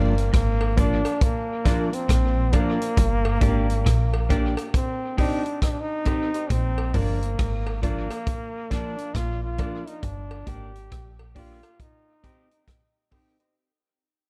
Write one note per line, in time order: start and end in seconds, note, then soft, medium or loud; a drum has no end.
0.00 0.31 G1 medium
0.00 0.15 G2 medium
0.00 0.13 F3 medium
0.00 0.13 A#3 medium
0.00 0.33 A#3 medium
0.00 0.11 D4 medium
0.00 0.13 D4 medium
0.00 0.11 F4 medium
0.00 0.12 A#4 medium
0.00 0.12 D5 loud
0.18 closed hi-hat soft
0.33 1.02 G#1 medium
0.33 0.59 G#2 medium
0.33 0.80 A#3 medium
0.33 kick loud
0.33 cross-stick loud
0.33 closed hi-hat medium
0.61 cowbell medium
0.76 1.01 F3 medium
0.76 1.01 A#3 medium
0.76 0.99 D4 medium
0.76 1.01 D4 medium
0.76 1.24 D4 medium
0.76 1.00 F4 medium
0.76 1.00 A#4 medium
0.76 1.00 D5 loud
0.76 kick medium
0.76 closed hi-hat medium
1.05 closed hi-hat soft
1.05 cowbell medium
1.21 1.96 A#3 medium
1.21 kick loud
1.21 closed hi-hat medium
1.64 1.89 F3 medium
1.64 1.89 A#3 medium
1.64 1.87 D4 medium
1.64 1.90 D4 medium
1.64 1.88 F4 medium
1.64 1.88 A#4 medium
1.64 1.88 D5 loud
1.64 kick medium
1.64 cross-stick medium
1.64 closed hi-hat medium
1.93 2.56 C4 medium
1.93 muted clean electric guitar stroke soft
1.93 closed hi-hat medium
2.09 2.52 A#1 medium
2.09 2.36 A#2 medium
2.09 kick loud
2.09 cross-stick medium
2.09 closed hi-hat medium
2.52 2.77 F3 medium
2.52 2.77 A#3 medium
2.52 4.52 A#3 medium
2.52 2.76 D4 loud
2.52 2.78 D4 medium
2.52 2.76 F4 medium
2.52 2.76 A#4 medium
2.52 2.76 D5 loud
2.52 kick medium
2.52 closed hi-hat medium
2.52 cowbell medium
2.82 2.88 A#4 soft
2.82 2.88 D5 soft
2.82 closed hi-hat soft
2.97 3.40 G1 loud
2.97 3.24 G2 medium
2.97 kick loud
2.97 closed hi-hat loud
3.25 cowbell medium
3.40 3.84 G#1 medium
3.40 3.68 G#2 medium
3.40 3.65 A#3 medium
3.40 3.64 D4 medium
3.40 3.66 D4 medium
3.40 3.64 G4 medium
3.40 3.66 G4 medium
3.40 3.64 A#4 medium
3.40 3.65 D5 loud
3.40 kick loud
3.40 closed hi-hat medium
3.70 closed hi-hat medium
3.86 4.55 A#1 medium
3.86 4.12 A#2 medium
3.86 kick loud
3.86 cross-stick loud
3.86 closed hi-hat medium
4.14 cowbell medium
4.29 4.54 A#3 medium
4.29 4.52 D4 medium
4.29 4.54 D4 medium
4.29 4.54 G4 medium
4.29 4.52 G4 medium
4.29 4.53 A#4 medium
4.29 4.53 D5 loud
4.29 kick loud
4.29 closed hi-hat medium
4.57 closed hi-hat soft
4.57 cowbell medium
4.74 5.15 C4 medium
4.74 kick loud
4.74 closed hi-hat medium
5.17 5.42 C4 medium
5.17 5.60 D4 medium
5.17 5.40 D#4 medium
5.17 5.42 D#4 medium
5.17 5.41 G4 medium
5.17 5.42 G4 loud
5.17 5.41 C5 medium
5.17 5.41 D#5 loud
5.17 kick medium
5.17 open hi-hat medium
5.45 muted clean electric guitar stroke soft
5.45 closed hi-hat soft
5.62 5.73 D#4 medium
5.62 kick loud
5.62 cross-stick medium
5.62 closed hi-hat medium
5.71 5.82 D4 medium
5.80 6.52 D#4 loud
6.05 6.30 C4 medium
6.05 6.29 D#4 medium
6.05 6.30 D#4 medium
6.05 6.29 G4 medium
6.05 6.31 G4 medium
6.05 6.29 C5 medium
6.05 6.29 D#5 loud
6.05 kick medium
6.05 closed hi-hat medium
6.05 cowbell medium
6.34 6.47 D#4 medium
6.34 6.47 G4 medium
6.34 6.47 C5 medium
6.34 6.48 D#5 medium
6.34 closed hi-hat soft
6.50 6.93 A#1 loud
6.50 6.77 A#2 medium
6.50 6.96 C4 loud
6.50 kick loud
6.50 closed hi-hat loud
6.78 cowbell medium
6.94 7.37 G1 medium
6.94 7.21 G2 medium
6.94 7.18 F3 medium
6.94 7.19 A#3 medium
6.94 7.82 A#3 medium
6.94 7.17 D4 loud
6.94 7.19 D4 medium
6.94 7.17 F4 medium
6.94 7.17 A#4 medium
6.94 7.18 D5 loud
6.94 kick loud
6.94 open hi-hat medium
7.23 closed hi-hat soft
7.39 8.08 G#1 medium
7.39 7.65 G#2 medium
7.39 kick loud
7.39 cross-stick loud
7.39 closed hi-hat medium
7.67 cowbell medium
7.82 8.06 F3 medium
7.82 8.73 A#3 medium
7.82 8.07 A#3 medium
7.82 8.05 D4 medium
7.82 8.07 D4 medium
7.82 8.05 F4 medium
7.82 8.06 A#4 medium
7.82 8.06 D5 loud
7.82 kick medium
7.82 closed hi-hat medium
8.11 closed hi-hat soft
8.11 cowbell medium
8.27 kick loud
8.27 closed hi-hat medium
8.70 8.95 F3 medium
8.70 8.95 A#3 medium
8.70 8.93 D4 medium
8.70 8.96 D4 medium
8.70 9.18 D4 loud
8.70 8.93 F4 medium
8.70 8.94 A#4 medium
8.70 8.94 D5 loud
8.70 kick medium
8.70 cross-stick medium
8.70 closed hi-hat medium
8.98 muted clean electric guitar stroke soft
8.98 closed hi-hat medium
9.15 9.57 A#1 loud
9.15 9.42 A#2 medium
9.15 9.43 F4 loud
9.15 kick loud
9.15 cross-stick medium
9.15 closed hi-hat medium
9.44 9.89 F4 medium
9.58 9.83 F3 medium
9.58 9.83 A#3 medium
9.58 9.81 D4 medium
9.58 9.84 D4 medium
9.58 9.82 F4 medium
9.58 9.82 A#4 medium
9.58 9.82 D5 loud
9.58 kick loud
9.58 closed hi-hat medium
9.58 cowbell medium
9.87 10.05 D#4 medium
9.87 9.94 A#4 soft
9.87 9.94 D5 soft
9.87 closed hi-hat medium
10.03 10.46 G1 loud
10.03 10.30 G2 medium
10.03 10.50 D4 loud
10.03 kick loud
10.03 closed hi-hat loud
10.31 cowbell medium
10.46 10.90 G#1 medium
10.46 10.74 G#2 medium
10.46 10.71 A#3 medium
10.46 10.70 D4 loud
10.46 10.71 D4 medium
10.46 10.70 G4 medium
10.46 10.72 G4 medium
10.46 11.14 G4 medium
10.46 10.70 A#4 medium
10.46 10.70 D5 loud
10.46 kick medium
10.46 closed hi-hat medium
10.75 closed hi-hat soft
10.91 11.61 A#1 medium
10.91 11.18 A#2 medium
10.91 kick loud
10.91 cross-stick loud
10.91 closed hi-hat medium
11.19 cowbell medium
11.35 11.59 A#3 medium
11.35 11.58 D4 medium
11.35 11.60 D4 medium
11.35 11.82 F4 loud
11.35 11.58 G4 medium
11.35 11.60 G4 medium
11.35 11.58 A#4 medium
11.35 11.59 D5 loud
11.35 kick loud
11.35 open hi-hat medium
11.63 closed hi-hat soft
11.63 cowbell medium
11.80 12.68 D#4 medium
11.80 kick loud
11.80 closed hi-hat medium
12.23 12.48 C4 medium
12.23 12.46 D#4 medium
12.23 12.48 D#4 medium
12.23 12.46 G4 medium
12.23 12.48 G4 loud
12.23 12.47 C5 medium
12.23 12.47 D#5 loud
12.23 kick medium
12.23 closed hi-hat medium
12.51 muted clean electric guitar stroke soft
12.51 closed hi-hat medium
12.68 kick loud
12.68 cross-stick loud
12.68 closed hi-hat medium
13.11 13.36 C4 medium
13.11 13.34 D#4 medium
13.11 13.36 D#4 medium
13.11 13.35 G4 medium
13.11 13.36 G4 medium
13.11 13.35 C5 medium
13.11 13.35 D#5 medium
13.11 kick medium
13.11 open hi-hat medium
13.11 cowbell medium
13.39 13.53 D#4 medium
13.39 13.53 G4 medium
13.39 13.53 C5 medium
13.39 13.53 D#5 medium
13.39 closed hi-hat soft